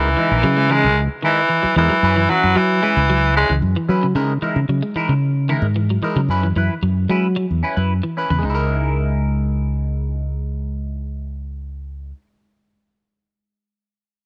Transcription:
Already playing: fingered electric bass C#2, clean electric guitar C#3, baritone saxophone E3
0.17 clean electric guitar E3 G#3 D#4 E4, muted clean electric guitar stroke
0.31 fingered electric bass A#1, clean electric guitar D#4 E4 A#4
0.43 fingered electric bass C#3, clean electric guitar F#3
0.57 clean electric guitar G#3
0.70 clean electric guitar E3 G#3 D#4 E4 A#4, baritone saxophone G#3
0.83 fingered electric bass C#2, clean electric guitar C#3 E4 A#4
1.22 clean electric guitar D#3 G#3 D#4 E4 A#4, baritone saxophone E3
1.49 clean electric guitar E3
1.63 clean electric guitar F#3, muted fingered electric bass stroke
1.76 fingered electric bass E2, clean electric guitar E3 G#3 D#4 E4 A#4, baritone saxophone E3
1.90 clean electric guitar F#3
2.03 fingered electric bass F#2, clean electric guitar C#4 E4 B4
2.16 clean electric guitar E3
2.29 clean electric guitar E3 C#4 E4 B4, baritone saxophone F#3
2.43 fingered electric bass F#2, clean electric guitar E4 B4
2.55 baritone saxophone E3, clean electric guitar F#3, fingered electric bass F#3
2.82 clean electric guitar G#3 C#4 E4 B4
2.97 fingered electric bass C#2
3.10 clean electric guitar F#3
3.36 baritone saxophone G#3, clean electric guitar C#4 E4 B4
3.49 fingered electric bass C#2, clean electric guitar E3
3.62 fingered electric bass F#2
3.76 clean electric guitar E3
3.89 fingered electric bass F#3, clean electric guitar C#4 E4 B4
4.03 clean electric guitar C#3
4.15 fingered electric bass C#3, clean electric guitar C#3 G#3 D#4 E4 A#4
4.42 clean electric guitar E3 G#3 D#4 E4 A#4, muted fingered electric bass stroke
4.56 fingered electric bass C#3
4.69 fingered electric bass C#3, clean electric guitar F#3
4.83 clean electric guitar G#3
4.95 clean electric guitar E3 G#3 D#4 E4 A#4, muted fingered electric bass stroke
5.09 fingered electric bass C#3, clean electric guitar C#3
5.49 clean electric guitar D#3 G#3 D#4 E4 A#4
5.62 fingered electric bass G#2
5.76 clean electric guitar E3
5.90 clean electric guitar F#3
6.01 clean electric guitar E3 G#3 D#4 E4 A#4, muted fingered electric bass stroke
6.16 fingered electric bass C#3, clean electric guitar F#3
6.28 fingered electric bass F#2, clean electric guitar C#4 E4 B4
6.43 clean electric guitar E3
6.56 fingered electric bass F#2, clean electric guitar E3 E4 B4, muted clean electric guitar stroke
6.82 fingered electric bass F#2, clean electric guitar F#3
7.09 fingered electric bass F#3, clean electric guitar G#3 C#4 E4 B4
7.36 clean electric guitar F#3
7.51 fingered electric bass E2
7.63 clean electric guitar C#4 E4 B4
7.76 fingered electric bass F#2, clean electric guitar E4 B4
8.03 clean electric guitar E3
8.17 clean electric guitar C#4 E4 B4
8.30 fingered electric bass E2, clean electric guitar C#3 E4 B4
8.39 clean electric guitar G#3
8.43 fingered electric bass C#2, clean electric guitar C#3 D#4
8.50 clean electric guitar E4
8.55 clean electric guitar A#4

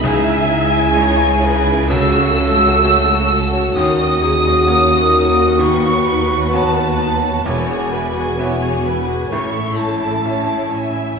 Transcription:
Already playing: french horn section G#3
0.02 double bass section C#2, grand piano C#2 C#3, cello section C#3, violin section D#4 G#4 G#5, french horn section E4, viola section E5, flute section G#5
0.27 violin section D#4 E4
0.49 violin section D#4 G#4
0.72 violin section D#4 E4
0.95 grand piano G#3 E4 D#5, violin section D#4 G#4, viola section C#5
1.18 violin section D#4 E4
1.42 violin section D#4 G#4, viola section B4
1.66 violin section D#4 E4
1.89 grand piano C#2 C#3, french horn section A3 F#4, violin section C#4 A4 E6, viola section A4, flute section E6
2.14 violin section F#4 C#5
2.37 violin section C#4 A4
2.60 violin section F#4 C#5
2.82 grand piano A3 F#4 C#5, violin section C#4 A4
3.07 violin section F#4 C#5
3.29 violin section C#4 A4
3.52 violin section F#4 C#5
3.75 double bass section D#2, cello section D#2, grand piano D#2 D#3, french horn section C#4, violin section D#4 C#5 D#6, viola section A#4, flute section D#6
3.99 violin section F#4 D#5
4.22 violin section D#4 C#5, viola section G#4
4.45 violin section F#4 D#5
4.67 grand piano A#3 F#4 C#5, violin section D#4 C#5, viola section A#4
4.91 violin section F#4 D#5
5.14 violin section D#4 C#5
5.37 violin section F#4 D#5
5.59 grand piano D#2 D#3, french horn section B3, violin section D#4 B4 C#6, viola section B4, flute section C#6
5.83 violin section F#4 C#5
6.06 violin section D#4 B4
6.30 violin section F#4 C#5
6.52 grand piano B3 F#4 C#5, violin section D#4 B4 A5, flute section A5
6.75 violin section F#4 C#5
6.98 violin section D#4 B4
7.21 violin section F#4 C#5
7.45 grand piano E1 E2, double bass section E1, cello section E2, violin section E4 B4 G#5, french horn section F#4, viola section C#5, flute section G#5
7.69 violin section F#4 G#4
7.93 violin section E4 B4, viola section B4
8.15 violin section F#4 G#4
8.38 grand piano B3 F#4 E5, violin section E4 B4, viola section C#5
8.61 violin section F#4 G#4
8.85 violin section E4 B4, viola section B4
9.07 violin section F#4 G#4
9.30 double bass section A1, grand piano A1 A2, cello section A2, violin section C#4 C#5 C#6, french horn section C#4 E4, viola section A4, flute section C#6
9.53 violin section E4 E5
9.76 violin section C#4 C#5 A5, flute section A5
9.99 violin section E4 E5
10.22 violin section C#4 C#5, grand piano C#4 E4 E5, viola section C#5
10.46 violin section E4 E5
10.70 violin section C#4 C#5 G#5, viola section E5, flute section G#5
10.94 violin section E4 E5

